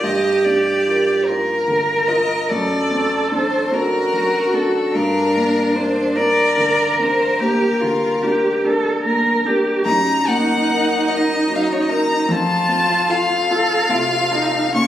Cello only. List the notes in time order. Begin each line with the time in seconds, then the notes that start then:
0.05 G4
1.27 A#4
2.49 A4
3.72 F#4
4.94 D4
6.16 A#4
7.40 G4
7.80 F4
8.22 G4
8.64 A4
9.04 A#4
9.46 G4
9.86 D#4
12.30 F4
13.51 A4
13.90 F4
14.33 D#4
14.72 C#4